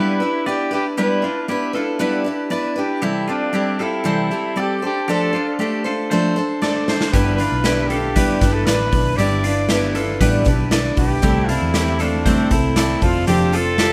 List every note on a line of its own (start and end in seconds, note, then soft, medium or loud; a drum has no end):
0.00 0.21 G3 medium
0.00 0.21 B3 medium
0.00 0.21 D4 medium
0.00 0.21 E4 medium
0.00 0.48 E4 medium
0.00 0.44 G4 medium
0.00 0.19 B4 medium
0.00 0.44 B4 medium
0.20 0.46 D4 soft
0.20 0.47 E4 soft
0.20 0.46 B4 soft
0.46 0.72 B3 medium
0.46 0.73 D4 medium
0.46 0.72 E4 medium
0.46 0.72 G4 medium
0.46 0.95 B4 medium
0.46 0.70 B4 medium
0.46 0.95 D5 medium
0.71 0.97 D4 soft
0.71 0.98 E4 soft
0.71 0.85 G4 medium
0.71 0.97 B4 soft
0.97 1.23 G3 medium
0.97 1.24 B3 medium
0.97 1.24 D4 medium
0.97 1.24 E4 medium
0.97 1.23 E4 medium
0.97 1.23 G4 medium
0.97 1.45 B4 medium
0.97 1.21 B4 medium
1.22 1.49 D4 medium
1.22 1.48 D4 soft
1.22 1.49 E4 soft
1.22 1.49 F4 medium
1.22 1.48 B4 soft
1.48 1.74 B3 medium
1.48 1.75 D4 medium
1.48 1.75 E4 medium
1.48 1.74 E4 medium
1.48 1.74 G4 medium
1.48 1.72 B4 medium
1.73 1.99 D4 soft
1.73 1.99 E4 soft
1.73 2.01 F4 medium
1.73 2.00 A4 medium
1.73 2.00 B4 soft
1.99 2.25 G3 medium
1.99 2.26 B3 medium
1.99 2.26 D4 medium
1.99 2.25 E4 medium
1.99 2.49 G4 medium
1.99 2.48 B4 medium
1.99 2.23 B4 medium
2.24 2.49 D4 soft
2.24 2.51 E4 medium
2.24 2.51 B4 medium
2.50 2.77 B3 medium
2.50 2.77 D4 medium
2.50 2.76 E4 medium
2.50 3.00 B4 medium
2.50 2.74 B4 medium
2.50 3.00 D5 medium
2.76 3.02 D4 soft
2.76 3.02 E4 soft
2.76 3.05 G4 medium
2.76 3.02 B4 soft
3.02 3.28 C3 medium
3.02 3.28 E3 medium
3.02 3.28 G3 medium
3.02 3.28 C4 medium
3.02 3.29 E4 medium
3.02 3.27 G4 medium
3.02 3.28 G4 medium
3.02 3.26 A4 medium
3.28 3.51 G3 soft
3.28 3.52 C4 soft
3.28 3.54 D4 medium
3.28 3.83 D4 medium
3.28 3.53 F4 medium
3.28 3.54 G4 soft
3.28 3.54 A4 soft
3.53 3.79 G3 medium
3.53 3.80 C4 medium
3.53 3.80 E4 soft
3.53 3.80 G4 medium
3.53 3.79 G4 medium
3.53 3.78 A4 medium
3.79 4.04 G3 soft
3.79 4.04 C4 soft
3.79 4.61 E4 medium
3.79 4.06 F4 medium
3.79 4.05 G4 soft
3.79 4.05 A4 soft
3.79 4.06 A4 medium
4.04 4.30 C3 medium
4.04 4.31 E3 medium
4.04 4.31 G3 medium
4.04 4.31 C4 medium
4.04 4.30 G4 medium
4.04 4.30 A4 medium
4.04 4.54 A4 medium
4.04 4.54 C5 medium
4.31 4.54 G3 soft
4.31 4.55 C4 soft
4.31 4.56 G4 soft
4.31 4.57 A4 soft
4.56 4.82 G3 soft
4.56 4.82 C4 medium
4.56 4.83 G4 medium
4.56 4.84 G4 medium
4.56 5.06 A4 medium
4.56 4.82 A4 medium
4.56 5.05 D5 medium
4.82 5.08 D4 soft
4.82 5.08 G4 medium
4.82 5.09 A4 soft
4.82 5.08 C5 soft
5.08 5.34 F3 medium
5.08 5.34 A3 medium
5.08 5.33 D4 medium
5.08 5.34 D4 medium
5.08 5.33 G4 medium
5.08 5.56 A4 medium
5.08 5.34 A4 medium
5.08 5.32 C5 medium
5.33 5.59 D4 medium
5.33 5.58 D4 soft
5.33 5.59 F4 medium
5.33 5.60 A4 soft
5.33 5.59 C5 soft
5.59 5.85 A3 medium
5.59 5.85 D4 medium
5.59 5.86 D4 medium
5.59 5.85 G4 medium
5.59 5.85 A4 medium
5.59 5.83 C5 medium
5.84 6.11 D4 soft
5.84 6.11 F4 medium
5.84 6.10 A4 medium
5.84 6.11 A4 medium
5.84 6.10 C5 soft
6.10 6.36 F3 medium
6.10 6.37 A3 medium
6.10 6.37 D4 medium
6.10 6.59 A4 medium
6.10 6.36 A4 medium
6.10 6.59 C5 medium
6.10 6.35 C5 medium
6.36 6.61 D4 soft
6.36 6.62 A4 medium
6.36 6.62 C5 medium
6.62 6.87 A3 medium
6.62 6.88 D4 medium
6.62 7.11 A4 medium
6.62 6.88 A4 medium
6.62 6.87 C5 medium
6.62 7.10 D5 medium
6.62 snare soft
6.87 7.13 D4 soft
6.87 7.14 A4 soft
6.87 7.13 C5 medium
6.87 7.13 C5 soft
6.87 snare medium
7.01 snare medium
7.11 7.46 G1 medium
7.11 7.39 G3 medium
7.11 7.39 B3 medium
7.11 7.39 D4 medium
7.11 7.40 E4 medium
7.11 7.38 E4 medium
7.11 7.39 G4 medium
7.11 7.35 B4 medium
7.11 kick medium
7.11 closed hi-hat medium
7.16 7.37 B4 medium
7.35 7.89 B4 medium
7.35 7.64 B4 soft
7.39 7.65 D4 medium
7.39 7.63 D4 soft
7.39 7.64 E4 soft
7.39 7.64 F4 medium
7.39 closed hi-hat medium
7.52 8.25 B1 medium
7.64 7.90 B3 medium
7.64 7.90 D4 medium
7.64 7.90 E4 medium
7.64 7.91 E4 soft
7.64 7.90 G4 medium
7.64 7.89 B4 medium
7.64 snare medium
7.64 closed hi-hat medium
7.88 8.16 E4 soft
7.88 8.16 F4 medium
7.88 8.54 G4 medium
7.88 8.16 A4 medium
7.88 8.16 B4 medium
7.88 closed hi-hat medium
7.93 8.15 D4 soft
8.16 8.41 G3 medium
8.16 8.42 B3 medium
8.16 8.42 D4 medium
8.16 8.42 E4 medium
8.16 8.64 G4 medium
8.16 8.64 B4 medium
8.16 8.40 B4 medium
8.16 kick medium
8.16 closed hi-hat medium
8.41 8.63 G1 medium
8.41 8.66 D4 soft
8.41 8.67 E4 soft
8.41 8.67 B4 medium
8.41 kick medium
8.41 snare soft
8.41 closed hi-hat medium
8.53 8.67 A4 medium
8.66 8.89 A1 medium
8.66 8.92 B3 medium
8.66 8.93 D4 soft
8.66 8.93 E4 medium
8.66 9.17 B4 medium
8.66 9.16 B4 medium
8.66 8.91 B4 medium
8.66 9.15 D5 medium
8.66 snare medium
8.66 closed hi-hat medium
8.92 9.14 B1 medium
8.92 9.18 D4 soft
8.92 9.19 E4 soft
8.92 9.18 B4 medium
8.92 kick medium
8.92 open hi-hat medium
9.16 10.17 G1 loud
9.16 9.44 G3 medium
9.16 9.44 B3 medium
9.16 9.44 D4 medium
9.16 9.44 E4 medium
9.16 9.43 G4 medium
9.16 9.68 D5 medium
9.16 closed hi-hat medium
9.20 9.45 E4 medium
9.20 9.44 B4 medium
9.44 9.70 D4 medium
9.44 9.70 E4 soft
9.44 9.69 F4 medium
9.44 9.70 B4 soft
9.44 closed hi-hat medium
9.48 9.68 D4 soft
9.69 9.95 B3 medium
9.69 9.95 D4 medium
9.69 9.96 E4 medium
9.69 9.95 E4 medium
9.69 9.95 G4 medium
9.69 9.94 B4 medium
9.69 snare medium
9.69 closed hi-hat medium
9.95 10.21 D4 soft
9.95 10.21 E4 soft
9.95 10.21 F4 medium
9.95 10.21 A4 medium
9.95 10.21 B4 soft
9.95 closed hi-hat medium
10.21 10.42 A1 medium
10.21 10.46 G3 medium
10.21 10.46 B3 medium
10.21 10.47 D4 medium
10.21 10.45 E4 medium
10.21 10.69 G4 medium
10.21 10.69 B4 medium
10.21 10.43 B4 medium
10.21 kick medium
10.21 closed hi-hat medium
10.45 10.90 B1 medium
10.45 10.71 D4 soft
10.45 10.72 E4 soft
10.45 10.71 B4 medium
10.45 kick medium
10.45 closed hi-hat medium
10.71 10.97 B3 medium
10.71 10.98 D4 medium
10.71 10.97 E4 medium
10.71 11.20 B4 medium
10.71 10.95 B4 medium
10.71 11.20 D5 medium
10.71 snare loud
10.71 closed hi-hat medium
10.97 11.19 B1 medium
10.97 11.22 D4 soft
10.97 11.23 E4 soft
10.97 11.50 G4 medium
10.97 11.23 B4 soft
10.97 kick medium
10.97 open hi-hat medium
11.22 11.56 C2 loud
11.22 11.48 C3 medium
11.22 11.48 G3 medium
11.22 11.49 A3 medium
11.22 11.49 C4 medium
11.22 11.49 E4 medium
11.22 11.48 G4 medium
11.22 11.47 A4 medium
11.22 kick medium
11.22 closed hi-hat medium
11.48 11.73 A3 soft
11.48 11.74 C4 soft
11.48 11.75 D4 medium
11.48 12.03 E4 medium
11.48 11.75 E4 soft
11.48 11.74 F4 medium
11.48 11.74 A4 soft
11.48 closed hi-hat medium
11.62 12.35 E2 medium
11.74 12.00 A3 medium
11.74 12.00 C4 medium
11.74 12.00 E4 medium
11.74 11.99 E4 medium
11.74 11.99 G4 medium
11.74 11.98 A4 medium
11.74 snare medium
11.74 closed hi-hat medium
11.99 12.25 A3 soft
11.99 12.26 C4 soft
11.99 12.53 D4 medium
11.99 12.26 E4 soft
11.99 12.26 F4 medium
11.99 12.25 A4 soft
11.99 12.25 A4 medium
11.99 closed hi-hat medium
12.26 12.51 C3 medium
12.26 12.51 G3 medium
12.26 12.52 A3 medium
12.26 12.52 C4 medium
12.26 12.51 E4 medium
12.26 12.74 A4 medium
12.26 12.50 A4 medium
12.26 12.74 C5 medium
12.26 kick medium
12.26 closed hi-hat medium
12.51 12.95 C2 medium
12.51 12.76 A3 soft
12.51 12.76 C4 soft
12.51 13.05 E4 medium
12.51 12.77 E4 medium
12.51 12.77 A4 medium
12.51 kick medium
12.51 closed hi-hat medium
12.76 13.03 A3 medium
12.76 13.03 C4 medium
12.76 13.02 E4 medium
12.76 13.25 A4 medium
12.76 13.00 A4 medium
12.76 13.25 D5 medium
12.76 snare medium
12.76 closed hi-hat loud
13.02 13.24 F1 medium
13.02 13.27 C4 soft
13.02 13.27 F4 medium
13.02 13.27 F4 soft
13.02 13.28 A4 medium
13.02 13.28 C5 soft
13.02 kick medium
13.02 open hi-hat medium
13.27 13.93 F1 medium
13.27 13.54 D3 medium
13.27 13.53 F3 medium
13.27 13.54 C4 medium
13.27 13.53 D4 medium
13.27 13.53 F4 medium
13.27 13.53 G4 medium
13.27 13.56 G4 medium
13.27 13.51 A4 medium
13.27 13.53 C5 medium
13.27 closed hi-hat medium
13.52 13.77 C4 soft
13.52 13.79 D4 medium
13.52 13.78 F4 medium
13.52 13.78 F4 soft
13.52 13.79 A4 soft
13.52 13.93 A4 loud
13.52 13.79 C5 soft
13.52 closed hi-hat medium
13.78 13.93 C4 medium
13.78 13.93 D4 medium
13.78 13.93 F4 medium
13.78 13.93 G4 medium
13.78 13.93 A4 medium
13.78 13.93 C5 medium
13.78 snare loud
13.78 closed hi-hat medium